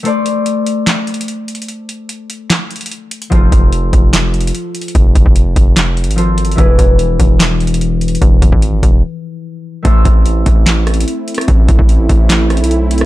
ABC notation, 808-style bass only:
X:1
M:4/4
L:1/16
Q:1/4=147
K:Am
V:1 name="808-style bass" clef=bass
z16 | z16 | F,,,2 F,,,4 F,,,6 z4 | F,,,2 F,,, F,,,3 F,,,4- F,,, ^G,,,4- G,,, |
E,,,2 E,,,4 E,,,8- E,,,2 | E,,,2 E,,, ^G,,,3 E,,,2 z8 | A,,,2 A,,,4 A,,,6 z4 | A,,,2 A,,, A,,,3 A,,,4- A,,, B,,,4- B,,, |]